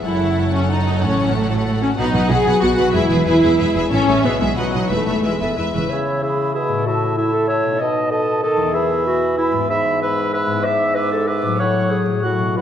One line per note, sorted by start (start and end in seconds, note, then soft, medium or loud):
0.00 1.04 E4 soft
0.05 1.00 F#1 soft
0.05 1.04 F#2 soft
0.05 1.01 F#2 soft
0.05 0.50 E4 medium
0.05 1.94 A4 soft
0.05 1.94 C#5 soft
0.05 1.94 F#5 soft
0.22 1.04 C#3 soft
0.38 1.33 C#4 soft
0.54 0.70 C#4 medium
0.54 0.85 F#4 soft
0.71 1.02 D#4 medium
0.71 1.64 A4 soft
0.86 1.49 F#4 soft
1.01 1.98 A1 soft
1.01 1.98 A2 soft
1.01 1.99 A2 soft
1.01 1.35 C#4 medium
1.18 1.99 A3 soft
1.34 1.83 A3 medium
1.34 1.99 C#4 soft
1.51 1.80 F#4 soft
1.66 1.99 A4 soft
1.82 1.89 C#4 medium
1.82 2.45 F#4 soft
1.97 2.04 B1 medium
1.97 2.96 B2 soft
1.97 2.04 B2 medium
1.97 2.30 D#4 medium
1.97 2.13 F#4 soft
1.97 2.13 B4 soft
1.97 2.13 F#5 soft
2.14 2.21 B1 soft
2.14 2.20 B2 medium
2.14 2.96 F#3 soft
2.14 2.27 F#4 soft
2.14 2.27 B4 soft
2.14 2.30 F#5 soft
2.28 2.37 B1 soft
2.28 2.36 B2 medium
2.28 2.61 B3 soft
2.28 2.44 F#4 soft
2.28 2.62 G#4 medium
2.28 2.43 B4 soft
2.28 2.46 F#5 soft
2.44 2.53 B1 medium
2.44 2.52 B2 soft
2.44 2.61 F#4 soft
2.44 2.76 F#4 soft
2.44 2.61 B4 soft
2.44 2.60 F#5 soft
2.62 2.69 B1 medium
2.62 2.69 B2 soft
2.62 3.09 B3 soft
2.62 2.76 F#4 soft
2.62 2.95 F#4 medium
2.62 2.76 B4 soft
2.62 2.75 F#5 soft
2.77 2.85 B1 soft
2.77 2.85 B2 soft
2.77 2.94 F#4 soft
2.77 2.96 F#4 soft
2.77 2.92 B4 soft
2.77 2.93 F#5 soft
2.92 3.01 E1 soft
2.92 3.02 E2 medium
2.92 3.93 E3 medium
2.92 3.26 E4 medium
2.92 3.08 G#4 medium
2.92 3.09 B4 soft
2.92 3.08 E5 medium
3.09 3.16 E1 soft
3.09 3.18 E2 medium
3.09 3.93 B3 soft
3.09 3.24 G#4 soft
3.09 3.25 B4 soft
3.09 3.25 E5 soft
3.26 3.33 E1 medium
3.26 3.34 E2 medium
3.26 4.07 E4 soft
3.26 3.75 E4 medium
3.26 3.40 G#4 soft
3.26 3.40 B4 soft
3.26 3.42 E5 soft
3.41 3.50 E1 soft
3.41 3.51 E2 medium
3.41 3.55 G#4 soft
3.41 3.75 G#4 soft
3.41 3.55 B4 soft
3.41 3.58 E5 soft
3.57 3.66 E1 medium
3.57 3.66 E2 soft
3.57 3.73 G#4 soft
3.57 3.73 B4 soft
3.57 3.93 B4 soft
3.57 3.75 E5 medium
3.74 3.83 E1 medium
3.74 3.82 E2 soft
3.74 3.91 G#4 soft
3.74 3.93 G#4 soft
3.74 3.91 B4 soft
3.74 3.90 E5 soft
3.91 3.99 A1 medium
3.91 4.26 A2 medium
3.91 3.99 A2 medium
3.91 4.22 C#4 medium
3.91 4.05 A4 soft
3.91 4.06 C#5 soft
3.91 4.08 E5 soft
4.06 4.15 A1 soft
4.06 4.15 A2 soft
4.06 4.39 E4 soft
4.06 4.23 A4 soft
4.06 4.26 A4 soft
4.06 4.24 C#5 soft
4.06 4.24 E5 soft
4.22 4.31 B1 soft
4.22 4.31 B2 soft
4.22 4.56 B2 soft
4.22 4.41 B3 medium
4.22 4.39 G#4 soft
4.22 4.39 E5 soft
4.22 4.40 E5 soft
4.40 4.48 B1 soft
4.40 4.48 B2 soft
4.40 4.47 G#3 medium
4.40 4.59 E4 soft
4.40 4.57 G#4 soft
4.40 4.59 G#4 soft
4.40 4.57 E5 soft
4.56 4.64 B1 soft
4.56 4.92 B2 soft
4.56 4.65 B2 soft
4.56 4.90 F#3 medium
4.56 4.71 B4 soft
4.56 4.71 D#5 soft
4.56 4.73 F#5 soft
4.72 4.81 B1 soft
4.72 4.81 B2 soft
4.72 4.92 D#4 soft
4.72 4.87 B4 soft
4.72 5.40 B4 soft
4.72 4.90 D#5 soft
4.72 4.91 F#5 soft
4.88 4.98 E1 soft
4.88 4.98 E2 soft
4.88 5.92 E3 soft
4.88 5.24 A3 medium
4.88 5.05 B4 soft
4.88 5.05 E5 soft
4.88 5.06 E5 soft
5.06 5.14 E1 soft
5.06 5.14 E2 soft
5.06 6.88 B3 soft
5.06 5.21 B4 soft
5.06 5.22 E5 soft
5.06 5.24 E5 soft
5.22 5.31 E1 soft
5.22 5.31 E2 soft
5.22 5.75 G#3 soft
5.22 5.57 E4 soft
5.22 5.39 B4 soft
5.22 5.39 E5 soft
5.22 5.40 E5 soft
5.40 5.48 E1 soft
5.40 5.48 E2 soft
5.40 5.58 A4 soft
5.40 5.55 B4 soft
5.40 5.74 B4 soft
5.40 5.55 E5 soft
5.40 5.56 E5 soft
5.56 5.64 E1 soft
5.56 5.65 E2 soft
5.56 5.81 E4 soft
5.56 5.73 B4 soft
5.56 5.91 B4 soft
5.56 5.73 E5 soft
5.56 5.74 E5 soft
5.74 5.82 E1 soft
5.74 5.81 E2 soft
5.74 6.79 C#3 soft
5.74 5.90 B4 soft
5.74 5.86 B4 soft
5.74 5.91 E5 soft
5.78 6.72 C#4 soft
5.82 6.77 E4 soft
5.87 6.86 B4 soft
5.87 6.24 C#5 medium
5.92 6.57 C#3 soft
5.92 6.22 E5 soft
5.92 6.21 B5 soft
6.22 6.54 G#4 medium
6.22 6.54 E5 soft
6.22 6.55 B5 soft
6.54 6.88 B2 soft
6.54 6.86 G#4 medium
6.54 6.86 E5 soft
6.54 6.86 B5 soft
6.68 7.73 A2 soft
6.73 7.75 C#4 soft
6.78 7.78 E4 soft
6.82 7.75 A4 soft
6.86 7.81 A2 medium
6.86 7.19 F#4 medium
6.86 7.17 E5 soft
6.86 7.18 A5 soft
7.17 7.32 E4 medium
7.17 7.49 E5 soft
7.17 7.49 A5 soft
7.32 7.47 A4 medium
7.47 7.81 C#5 medium
7.47 7.82 E5 soft
7.47 7.80 A5 soft
7.63 8.67 B2 soft
7.67 8.60 B3 soft
7.72 8.71 D#4 soft
7.76 8.74 A4 soft
7.76 8.12 D#5 medium
7.81 8.45 B2 soft
7.81 8.11 D#5 soft
7.81 8.11 A5 soft
8.11 8.42 A4 medium
8.11 8.42 D#5 soft
8.11 8.42 A5 medium
8.43 8.77 D#3 medium
8.43 8.74 A4 medium
8.43 8.76 D#5 soft
8.43 8.74 A5 medium
8.57 9.62 E2 soft
8.61 9.55 B3 soft
8.66 9.59 E4 soft
8.66 11.59 G#4 soft
8.73 9.69 E3 medium
8.73 9.05 G#4 medium
8.73 9.37 E5 medium
8.73 9.36 B5 medium
9.06 9.37 F#4 medium
9.38 9.53 E4 medium
9.38 9.69 E5 soft
9.38 9.69 B5 medium
9.52 10.45 G#2 soft
9.56 10.50 B3 soft
9.60 10.54 E4 soft
9.65 11.59 B4 soft
9.69 10.62 G#2 medium
9.69 9.99 E5 medium
9.69 10.01 E5 medium
9.69 9.99 B5 medium
10.00 10.32 B4 medium
10.00 10.32 E5 medium
10.00 10.32 B5 medium
10.33 10.66 B4 medium
10.33 10.64 E5 soft
10.33 10.63 B5 medium
10.46 11.52 G#2 soft
10.51 11.54 B3 soft
10.55 11.49 E4 soft
10.60 11.59 D5 soft
10.64 11.58 G#2 medium
10.64 10.96 E5 medium
10.64 10.95 E5 medium
10.64 10.95 D6 soft
10.95 11.11 B4 medium
10.95 11.27 E5 medium
10.95 11.26 D6 soft
11.12 11.29 A4 medium
11.27 11.59 B4 medium
11.27 11.61 E5 soft
11.27 11.59 D6 soft
11.42 12.04 A2 soft
11.46 12.09 F#3 soft
11.51 12.21 E4 soft
11.55 12.18 C#5 soft
11.59 12.00 A2 soft
11.59 11.92 C#5 medium
11.59 12.01 F#5 soft
11.59 11.98 C#6 medium
11.91 12.25 G#4 medium
12.06 12.49 A2 soft
12.10 12.42 F#3 soft
12.15 12.46 F#4 soft
12.19 12.56 C#5 soft
12.19 12.54 F#5 soft
12.19 12.56 C#6 soft
12.24 12.59 A2 soft
12.24 12.58 F#4 medium
12.39 12.61 B2 soft
12.43 12.61 F#3 soft
12.47 12.61 F#4 soft
12.52 12.61 B4 soft
12.57 12.61 B2 soft
12.57 12.61 E4 medium
12.57 12.61 F#5 soft
12.57 12.61 B5 soft